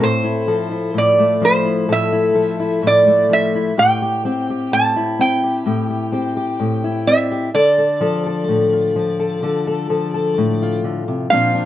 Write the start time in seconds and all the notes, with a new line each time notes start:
Already playing: C4
0.00 A2 A4 C5
0.24 E4
0.47 F3 A4
0.72 E4
0.94 A2
0.98 D5
1.19 A3
1.41 F3 C5
1.65 E4
1.88 A2 A4
1.92 E5
2.12 E4
2.34 F3 A4
2.60 E4
2.82 A2
2.87 D5
3.07 A3
3.29 F3 E5
3.55 E4
3.77 A2 G4 G5
4.02 G4
4.25 C4 G4
4.50 G4
4.72 A2 A5
4.96 E4
5.19 C4 G5
5.43 G4
5.66 A2 G4
5.90 G4
6.12 C4 G4
6.37 G4
6.60 A2
6.84 E4
7.07 C4 E5
7.32 G4
7.54 D3 A4 D5
7.78 A4
8.01 F3 A4
8.26 A4
8.48 A2
8.73 F4
8.96 F3
9.20 A4
9.43 D3 A4
9.67 A4
9.89 F3 A4
10.14 A4
10.38 A2
10.62 F4
10.84 D3
11.08 C3
11.30 A#2 F3 C4 D4 F4 F5
11.55 D4